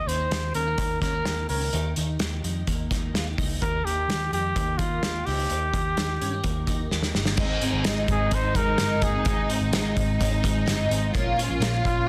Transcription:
Already playing: D#3 A#3 G4
0.07 D#2 C#4 C5, closed hi-hat
0.20 D#4
0.31 D#2 G4, snare, closed hi-hat
0.54 D#2 C#4 A#4, closed hi-hat
0.67 D#4
0.78 A#3, kick, closed hi-hat
1.01 D#2 C#4 A#4, kick, snare, closed hi-hat
1.14 D#4
1.25 D#2 G4, snare, closed hi-hat
1.49 C#2 C#4 A#4, open hi-hat
1.62 D#4
1.73 D#2 D#3 G4, closed hi-hat
1.96 D#2 D#4, closed hi-hat
2.19 D#2 G4, snare, closed hi-hat
2.44 F2 D#4, closed hi-hat
2.67 D#2 A#3, kick, closed hi-hat
2.91 D#2 D#4, kick, snare, closed hi-hat
3.14 D#2 F4, snare, closed hi-hat
3.26 G4
3.38 C#2 D#4, kick, open hi-hat
3.62 D#2 D#3 G4 A#4, kick, closed hi-hat
3.85 D#2 D#4 G4, closed hi-hat
4.08 D#2 G4, snare, closed hi-hat
4.32 F2 D#4 G4, closed hi-hat
4.56 D#2 A#3, kick, closed hi-hat
4.78 D#2 D#4 F4, kick, closed hi-hat
5.03 D#2 G4, snare, closed hi-hat
5.26 C#2 D#4 G4, open hi-hat
5.50 D#2 D#3 G4, closed hi-hat
5.74 D#2 D#4, kick, closed hi-hat
5.97 D#2 G4, snare, closed hi-hat
6.21 G2 C#4, closed hi-hat
6.33 D#4
6.44 D#2 A#3, kick, closed hi-hat
6.67 D#2 D#4, kick, closed hi-hat
6.91 D#2 G4, snare
7.03 snare
7.15 G1 D#4, snare
7.25 snare
7.37 G#1 G#2 D#3 G#3 C4 D#4, kick, crash
7.61 G#3 C4 D#4, closed hi-hat
7.73 G#1
7.84 G#1 G#2 D#3 G#3 C4 D#4, snare, closed hi-hat
8.08 G#1 C4 G#4, kick, closed hi-hat
8.31 G#1 G#3 C4 D#4 C5, kick, closed hi-hat
8.35 D#4
8.54 G#1 G#3 C4 D#4 A#4, kick, closed hi-hat
8.78 G1 G#2 D#3 G#3 C4 D#4, snare, closed hi-hat
9.02 G1 G#3 A#3 C4 D#4 G#4, kick, closed hi-hat
9.15 C4
9.25 G#1 G#2 D#3 G#3 C4 D#4, kick, closed hi-hat
9.49 G#3 C4 D#4, closed hi-hat
9.61 G#1
9.73 G#1 G#2 D#3 G#3 C4 D#4, snare, closed hi-hat
9.96 G#1 C4, kick, closed hi-hat
10.19 G#1 D#3 G#3 C4 C#4 D#4, kick, closed hi-hat
10.32 D#4
10.43 G#1 G#3 C4 D#4, kick, closed hi-hat
10.66 G1 G#2 D#3 G#3 C4 D#4, snare, closed hi-hat
10.89 G#1 G#3 C4 D#4, closed hi-hat
11.14 A#2 F3 A#3 C#4 F4, kick, closed hi-hat
11.36 A#3 C#4 F4, closed hi-hat
11.49 A#1
11.60 A#1 A#2 F3 A#3 C#4 F4, snare, closed hi-hat
11.85 A#1 C#4 F4, kick, closed hi-hat

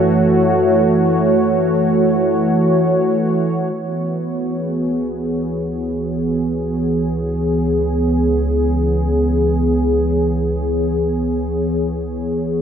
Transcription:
Already playing: F#2 E3 A3 F#4 C#5
3.74 C#2
3.84 B3
4.42 G#4

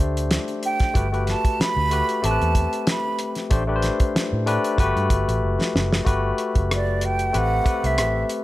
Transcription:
Already playing: A3 D4 G4 C5
0.00 D2
0.17 closed hi-hat
0.31 snare, closed hi-hat
0.48 closed hi-hat
0.63 G5, closed hi-hat
0.80 kick, snare, closed hi-hat
0.94 G1 A3 F#4 G4 B4, kick, closed hi-hat
1.12 A3 F#4 G4 B4, closed hi-hat
1.27 A5, snare, closed hi-hat
1.45 kick, closed hi-hat
1.60 B5, muted fingered electric bass stroke, snare, closed hi-hat
1.77 D2
1.91 A3 F#4 G4 B4, closed hi-hat
2.09 closed hi-hat
2.22 A1 A3 C4 G4 A4 A5, closed hi-hat
2.31 B4
2.41 E2, closed hi-hat
2.55 kick, closed hi-hat
2.73 closed hi-hat
2.87 B5, snare, closed hi-hat
3.19 closed hi-hat
3.35 snare, closed hi-hat
3.50 A1 A3 D4 G4 C5, kick, closed hi-hat
3.67 A3 D4 G4 B4
3.76 C5
3.82 snare, closed hi-hat
4.00 kick, closed hi-hat
4.16 muted fingered electric bass stroke, snare, closed hi-hat
4.33 A2
4.46 A3 D4 G4 B4, closed hi-hat
4.64 closed hi-hat
4.78 G1 A3 F#4 G4 B4, kick, closed hi-hat
4.96 G2, closed hi-hat
5.10 G1, kick, closed hi-hat
5.28 A1, closed hi-hat
5.43 F#1
5.61 snare
5.75 F#1, snare
5.93 snare
6.05 G1 A3 F#4 G4 B4, kick, closed hi-hat
6.38 closed hi-hat
6.55 F#1, kick, closed hi-hat
6.71 D5, cross-stick, closed hi-hat
7.01 G5, closed hi-hat
7.19 closed hi-hat
7.33 A1 A3 C4 G4 B4, closed hi-hat
7.38 F#5
7.64 A3 C4 G4 B4, kick, closed hi-hat
7.84 C2 E5, closed hi-hat
7.98 A1, cross-stick, closed hi-hat
8.29 closed hi-hat

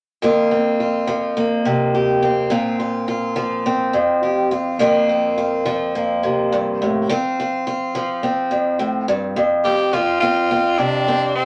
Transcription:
0.22 F2 A#3 C4 F4
0.51 C4
0.80 F4
1.07 F3
1.37 A#3
1.65 C3
1.95 G4
2.23 C4
2.50 A#2 C4 F4
2.80 F4
3.08 F4
3.36 F3
3.66 C4
3.93 F2
4.23 G4
4.51 F4
4.79 F2 A#3 C4 F4
5.09 C4
5.38 F4
5.66 F3
5.95 A#3
6.23 C3
6.52 G2
6.82 A2
7.09 C4 F4, muted steel-string acoustic guitar stroke
7.40 F4
7.67 F4
7.95 F3
8.23 C4
8.51 F2
8.79 A2
9.08 G2
9.36 F2
9.64 C4 G4
9.93 F3 C4 F4
10.20 C4 F4
10.51 C4
10.78 C3 D4
11.08 C4
11.35 C4

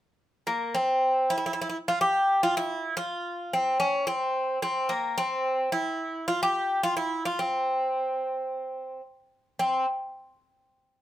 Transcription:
0.47 A#3
0.74 C4
1.30 E4
1.38 E4
1.46 E4
1.53 E4
1.61 E4
1.69 E4
1.88 F4
2.01 G4
2.43 F4
2.57 E4
2.97 F4
3.53 C4
3.80 C#4
4.07 C4
4.62 C4
4.89 A#3
5.18 C4
5.72 E4
6.28 F4
6.43 G4
6.83 F4
6.97 E4
7.25 F4
7.39 C4
9.59 C4

